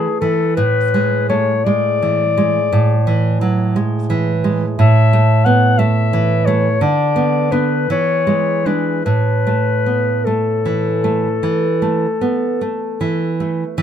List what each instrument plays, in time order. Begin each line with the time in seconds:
Already playing: nylon-string guitar A3, clarinet G#4
0.20 nylon-string guitar E3, clarinet A4
0.57 nylon-string guitar A2, clarinet B4
0.94 nylon-string guitar G#3
1.29 nylon-string guitar A3, clarinet C#5
1.64 nylon-string guitar G#3, clarinet D5
2.02 nylon-string guitar E3
2.37 nylon-string guitar G#3
2.72 nylon-string guitar A2
3.07 nylon-string guitar E3
3.41 nylon-string guitar F#3
3.76 nylon-string guitar G#3
4.10 nylon-string guitar E3
4.44 nylon-string guitar G#3
4.78 nylon-string guitar A2, clarinet E5
5.13 nylon-string guitar A3
5.45 nylon-string guitar B3, clarinet F#5
5.78 nylon-string guitar A3, clarinet E5
6.13 nylon-string guitar E3
6.46 nylon-string guitar A3, clarinet C#5
6.81 nylon-string guitar D3, clarinet D5
7.16 nylon-string guitar B3
7.52 nylon-string guitar B3 D4, clarinet B4
7.90 nylon-string guitar E3, clarinet C#5
8.27 nylon-string guitar G#3
8.66 nylon-string guitar G#3 D4, clarinet B4
9.05 nylon-string guitar A2, clarinet B4
9.47 nylon-string guitar A3
9.86 nylon-string guitar B3
10.25 nylon-string guitar A3, clarinet A4
10.65 nylon-string guitar E3
11.04 nylon-string guitar A3
11.43 nylon-string guitar E3
11.82 nylon-string guitar A3
12.21 nylon-string guitar B3
12.61 nylon-string guitar A3
13.01 nylon-string guitar E3
13.40 nylon-string guitar A3
13.78 nylon-string guitar E3